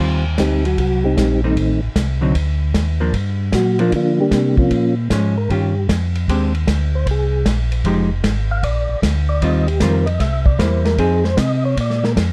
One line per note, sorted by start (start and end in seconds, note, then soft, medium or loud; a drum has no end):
0.00 0.37 D#2 medium
0.00 0.23 D#3 soft
0.00 0.23 G3 medium
0.00 0.23 C4 medium
0.00 0.23 F4 medium
0.38 0.76 D2 medium
0.38 0.65 G3 medium
0.38 0.64 C4 medium
0.38 0.64 D#4 medium
0.38 0.64 G4 medium
0.38 kick soft
0.38 snare medium
0.38 hi-hat pedal medium
0.38 ride medium
0.65 0.79 F#3 medium
0.65 0.78 F#4 medium
0.65 ride soft
0.78 1.16 C2 medium
0.78 1.04 F#3 medium
0.78 1.04 F#4 medium
0.78 kick soft
0.78 ride medium
1.04 1.41 G3 medium
1.04 1.41 C4 medium
1.04 1.41 D#4 medium
1.04 1.41 G4 medium
1.17 1.55 A#1 medium
1.17 kick soft
1.17 snare medium
1.17 hi-hat pedal medium
1.17 ride medium
1.44 1.81 D#3 medium
1.44 1.56 G3 medium
1.44 1.81 A3 soft
1.44 1.56 C4 medium
1.44 1.81 C4 soft
1.44 1.56 D#4 medium
1.44 1.81 D#4 medium
1.56 1.81 A1 medium
1.56 kick soft
1.56 ride medium
1.83 1.89 A1 soft
1.96 2.34 C2 medium
1.96 kick soft
1.96 snare medium
1.96 hi-hat pedal medium
1.96 ride medium
2.21 2.33 D3 medium
2.21 2.34 F#3 medium
2.21 2.34 C4 medium
2.21 2.34 D#4 medium
2.35 2.73 D2 medium
2.35 kick soft
2.35 ride medium
2.74 3.12 D#2 medium
2.74 kick soft
2.74 snare medium
2.74 hi-hat pedal medium
2.74 ride medium
3.00 3.12 F3 medium
3.00 3.13 A#3 medium
3.00 3.13 D4 medium
3.13 3.52 G2 medium
3.13 kick soft
3.13 ride medium
3.52 3.91 A#2 medium
3.52 3.79 F#3 medium
3.52 3.79 F#4 loud
3.52 kick soft
3.52 snare medium
3.52 hi-hat pedal soft
3.52 ride medium
3.79 3.91 F3 medium
3.79 3.93 F3 medium
3.79 3.92 A#3 medium
3.79 3.93 A#3 medium
3.79 3.92 D4 medium
3.79 3.93 D4 medium
3.79 3.93 F4 medium
3.79 ride soft
3.92 4.30 D3 medium
3.92 4.19 A#3 medium
3.92 4.19 F4 medium
3.92 kick soft
3.92 ride medium
3.96 4.19 F3 medium
3.96 4.20 D4 medium
4.20 4.56 G3 medium
4.20 4.56 A#3 medium
4.20 4.56 D4 medium
4.20 4.56 G4 loud
4.31 4.70 C3 medium
4.31 kick soft
4.31 snare medium
4.31 hi-hat pedal soft
4.31 ride medium
4.57 4.95 F3 medium
4.57 4.95 A#3 medium
4.57 4.95 C#4 medium
4.57 4.95 F4 medium
4.57 kick medium
4.70 5.09 A#2 medium
4.70 kick soft
4.70 ride medium
5.10 5.48 G#2 medium
5.10 5.34 F3 medium
5.10 5.34 G#3 medium
5.10 5.35 C#4 medium
5.10 kick soft
5.10 snare medium
5.10 hi-hat pedal medium
5.10 ride medium
5.38 5.50 A#4 medium
5.50 5.88 G2 medium
5.50 5.73 D#3 medium
5.50 5.73 C#4 medium
5.50 5.74 F4 medium
5.50 5.74 G4 medium
5.50 5.87 G4 medium
5.50 kick soft
5.50 ride medium
5.89 6.27 F2 medium
5.89 kick soft
5.89 snare medium
5.89 hi-hat pedal medium
5.89 ride medium
6.15 ride soft
6.28 6.66 D#2 medium
6.28 6.52 G#3 medium
6.28 6.52 C4 medium
6.28 6.52 D4 medium
6.28 6.52 G4 medium
6.28 kick soft
6.28 ride medium
6.55 ride soft
6.67 7.05 D2 medium
6.67 kick soft
6.67 snare medium
6.67 hi-hat pedal medium
6.67 ride medium
6.95 7.07 C5 medium
7.06 7.44 C2 medium
7.06 kick soft
7.06 ride medium
7.11 7.45 G#4 medium
7.45 7.84 A#1 medium
7.45 kick soft
7.45 snare medium
7.45 hi-hat pedal medium
7.45 ride medium
7.72 ride soft
7.84 8.23 F1 medium
7.84 8.09 F3 medium
7.84 8.09 G#3 medium
7.84 8.09 D#4 medium
7.84 8.09 G4 medium
7.84 kick soft
7.84 ride medium
8.24 8.62 G#1 medium
8.24 kick soft
8.24 snare medium
8.24 hi-hat pedal medium
8.24 ride medium
8.51 8.64 F5 loud
8.63 8.87 A#1 medium
8.63 9.00 D5 medium
8.63 kick soft
8.63 ride medium
8.89 8.96 A#1 soft
9.02 9.41 D2 loud
9.02 kick soft
9.02 snare medium
9.02 hi-hat pedal medium
9.02 ride medium
9.29 9.42 D5 medium
9.41 9.80 D#2 medium
9.41 9.66 D#3 medium
9.41 9.66 G3 medium
9.41 9.66 C4 medium
9.41 9.66 F4 medium
9.41 9.67 D#5 medium
9.41 kick soft
9.41 ride medium
9.67 9.80 G4 medium
9.67 ride soft
9.80 10.19 F2 loud
9.80 10.04 D#3 medium
9.80 10.05 G3 medium
9.80 10.05 C4 medium
9.80 10.05 F4 medium
9.80 10.07 A#4 medium
9.80 kick soft
9.80 snare medium
9.80 hi-hat pedal medium
9.80 ride medium
10.06 10.20 D#5 medium
10.06 ride medium
10.20 10.58 C2 medium
10.20 10.46 E5 loud
10.20 kick soft
10.20 snare soft
10.20 ride medium
10.45 10.59 D5 loud
10.45 kick medium
10.59 10.98 E2 loud
10.59 10.98 G3 medium
10.59 10.98 A#3 medium
10.59 10.99 E4 medium
10.59 10.85 C5 medium
10.59 kick soft
10.59 snare medium
10.59 hi-hat pedal medium
10.59 ride medium
10.85 10.99 A#4 medium
10.85 snare soft
10.85 ride soft
10.98 11.37 F2 medium
10.98 11.22 F3 medium
10.98 11.22 C4 medium
10.98 11.22 D#4 medium
10.98 11.24 G#4 medium
10.98 11.23 G#4 medium
10.98 kick soft
10.98 ride medium
11.24 11.38 C5 loud
11.24 snare soft
11.37 11.76 C3 medium
11.37 11.64 D#5 loud
11.37 kick soft
11.37 snare medium
11.37 hi-hat pedal medium
11.37 ride medium
11.65 11.78 C#5 loud
11.77 12.15 A#2 medium
11.77 kick soft
11.77 ride medium
11.81 12.04 D5 loud
11.90 snare soft
12.04 12.12 A#4 loud
12.04 snare soft
12.16 12.33 F2 loud
12.16 kick soft
12.16 snare medium
12.16 hi-hat pedal medium
12.16 ride medium